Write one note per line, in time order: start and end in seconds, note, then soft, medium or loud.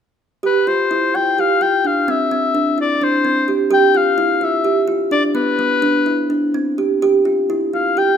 0.43 0.64 G4 medium
0.43 0.69 B4 medium
0.67 0.88 F4 medium
0.67 1.17 C5 medium
0.91 1.11 E4 medium
1.15 1.35 F4 medium
1.15 1.42 G5 medium
1.38 1.59 G4 medium
1.38 1.64 F5 medium
1.61 1.82 F4 medium
1.61 1.88 G5 medium
1.85 2.05 D4 medium
1.85 2.12 F5 medium
2.08 2.29 C4 medium
2.08 2.80 E5 medium
2.31 2.52 C4 medium
2.55 2.75 D4 medium
2.78 2.98 E4 medium
2.78 3.05 D5 medium
3.01 3.22 D4 medium
3.01 3.55 C5 medium
3.25 3.45 C4 medium
3.48 3.68 G4 medium
3.71 3.91 G4 medium
3.71 3.98 G5 medium
3.95 4.15 F4 medium
3.95 4.46 F5 medium
4.18 4.38 E4 medium
4.41 4.62 F4 medium
4.41 4.90 E5 medium
4.65 4.85 G4 medium
4.88 5.09 F4 medium
5.11 5.32 D4 medium
5.11 5.23 D5 medium
5.35 5.56 B3 medium
5.35 6.26 B4 medium
5.59 5.80 B3 medium
5.82 6.03 D4 medium
6.06 6.27 E4 medium
6.30 6.51 D4 medium
6.54 6.75 C4 medium
6.78 6.99 G4 medium
7.02 7.23 G4 medium
7.25 7.46 F4 medium
7.50 7.71 E4 medium
7.73 7.94 F4 medium
7.73 8.00 F5 medium
7.97 8.17 G4 medium
7.97 8.17 G5 medium